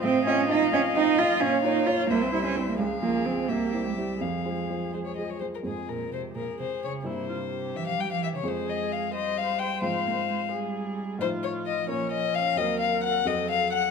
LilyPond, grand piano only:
\new Staff \with { instrumentName = "Grand piano" } { \time 6/8 \key f \minor \tempo 4. = 87 a,8 <c' f' ees''>8 <c' f' ees''>8 <c' f' ees''>8 <c' f' ees''>8 <c' f' ees''>8 | bes,8 <bes f' des''>8 <bes f' des''>8 c,8 <g e' c''>8 <g e' c''>8 | des,8 <f f' aes'>8 <f f' aes'>8 c,8 <g e' c''>8 <g e' c''>8 | f,8 <aes f' c''>8 <aes f' c''>8 <aes f' c''>8 <aes f' c''>8 <aes f' c''>8 |
<f, aes f' c''>2. | <g, bes e' c''>2. | <f, aes f' c''>2. | <aes, c' f' c''>2. |
\key f \phrygian <a, ees' f' c''>4. <bes, des' f' bes'>4. | <ees, c' ges' c''>4. <f, c' ges' a'>4. | }